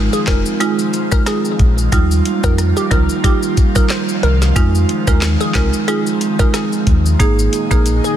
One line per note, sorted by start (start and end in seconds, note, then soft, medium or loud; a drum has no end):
0.00 8.17 D#3 medium
0.00 7.16 F3 medium
0.00 1.90 G#3 medium
0.00 1.90 C4 medium
0.00 7.16 F4 medium
0.13 0.23 G#4 medium
0.13 maracas medium
0.27 0.44 F1 medium
0.27 0.50 G#3 medium
0.27 0.50 D#4 medium
0.27 0.50 F4 medium
0.27 0.41 A#4 medium
0.27 kick loud
0.27 snare loud
0.27 clap medium
0.27 closed hi-hat medium
0.27 maracas soft
0.46 maracas medium
0.60 0.83 G#3 medium
0.60 0.83 D#4 medium
0.60 0.83 F4 loud
0.60 0.73 G#4 medium
0.60 closed hi-hat medium
0.60 maracas medium
0.79 maracas medium
0.93 closed hi-hat medium
0.93 maracas medium
1.12 1.31 G#3 medium
1.12 1.32 D#4 medium
1.12 1.32 F4 medium
1.12 1.22 A#4 medium
1.12 kick loud
1.12 maracas medium
1.26 1.75 G#4 medium
1.26 cross-stick loud
1.26 snare medium
1.26 closed hi-hat medium
1.26 maracas medium
1.45 maracas soft
1.59 1.88 A#1 medium
1.59 kick medium
1.59 closed hi-hat medium
1.78 maracas medium
1.92 2.21 D#2 loud
1.92 2.39 G3 medium
1.92 4.53 G3 medium
1.92 4.53 A#3 medium
1.92 2.39 D#4 medium
1.92 2.40 F4 loud
1.92 kick loud
1.92 closed hi-hat medium
1.92 maracas medium
2.11 maracas medium
2.25 closed hi-hat medium
2.44 2.73 F2 medium
2.44 2.63 G3 medium
2.44 2.63 D#4 medium
2.44 2.64 F4 medium
2.44 2.54 A#4 medium
2.44 kick medium
2.44 maracas medium
2.58 cross-stick medium
2.58 closed hi-hat medium
2.58 maracas medium
2.77 2.87 G4 medium
2.77 maracas medium
2.91 3.07 C#2 medium
2.91 3.13 G3 medium
2.91 3.14 D#4 medium
2.91 3.14 F4 medium
2.91 3.04 A#4 medium
2.91 kick loud
2.91 closed hi-hat medium
2.91 high timbale medium
2.91 maracas soft
3.09 maracas medium
3.24 3.46 G3 medium
3.24 3.47 D#4 medium
3.24 3.47 F4 loud
3.24 3.37 G4 medium
3.24 kick medium
3.24 closed hi-hat medium
3.24 maracas medium
3.43 maracas medium
3.57 kick loud
3.57 closed hi-hat medium
3.57 maracas medium
3.75 3.95 G3 medium
3.75 3.95 D#4 medium
3.75 3.95 F4 medium
3.75 3.86 A#4 medium
3.75 kick loud
3.75 maracas medium
3.90 4.03 C5 medium
3.90 cross-stick loud
3.90 snare loud
3.90 clap loud
3.90 closed hi-hat medium
3.90 maracas medium
4.09 maracas soft
4.23 4.52 C2 loud
4.23 4.36 A#4 medium
4.23 closed hi-hat medium
4.42 snare medium
4.42 maracas medium
4.56 4.85 F2 loud
4.56 5.03 G#3 loud
4.56 8.17 G#3 medium
4.56 7.17 C4 medium
4.56 5.03 D#4 medium
4.56 5.03 F4 loud
4.56 kick loud
4.56 closed hi-hat medium
4.56 maracas medium
4.75 maracas medium
4.89 closed hi-hat medium
5.07 5.36 D#2 medium
5.07 5.27 G#3 medium
5.07 5.27 D#4 medium
5.07 5.27 F4 medium
5.07 5.18 A#4 medium
5.07 kick medium
5.07 maracas medium
5.22 cross-stick medium
5.22 snare loud
5.22 clap medium
5.22 closed hi-hat medium
5.22 maracas medium
5.41 5.51 G#4 medium
5.41 maracas medium
5.55 5.71 C2 loud
5.55 5.77 G#3 medium
5.55 5.77 D#4 medium
5.55 5.78 F4 medium
5.55 5.68 A#4 medium
5.55 kick loud
5.55 snare loud
5.55 clap medium
5.55 closed hi-hat medium
5.55 maracas soft
5.73 maracas medium
5.88 6.10 G#3 medium
5.88 6.10 D#4 medium
5.88 6.11 F4 loud
5.88 6.01 G#4 medium
5.88 closed hi-hat medium
5.88 maracas medium
6.07 maracas medium
6.21 closed hi-hat medium
6.21 maracas medium
6.39 6.59 G#3 medium
6.39 6.59 D#4 medium
6.39 6.59 F4 medium
6.39 6.49 A#4 medium
6.39 kick loud
6.39 maracas medium
6.54 7.02 G#4 medium
6.54 cross-stick loud
6.54 snare medium
6.54 closed hi-hat medium
6.54 maracas medium
6.73 maracas soft
6.87 7.16 D#2 loud
6.87 kick loud
6.87 closed hi-hat medium
7.06 maracas medium
7.20 7.49 G#1 loud
7.20 8.17 A#2 medium
7.20 7.67 A#3 loud
7.20 8.17 D#4 medium
7.20 7.67 D#4 medium
7.20 8.17 G#4 medium
7.20 7.67 G#4 loud
7.20 kick loud
7.20 closed hi-hat medium
7.20 maracas medium
7.39 maracas medium
7.53 closed hi-hat medium
7.53 maracas medium
7.71 8.00 A#1 medium
7.71 7.91 A#3 medium
7.71 7.91 D#4 medium
7.71 7.91 G#4 medium
7.71 7.81 A#4 medium
7.71 kick medium
7.71 maracas medium
7.86 closed hi-hat medium
7.86 maracas medium
8.04 8.14 G#4 medium
8.04 maracas medium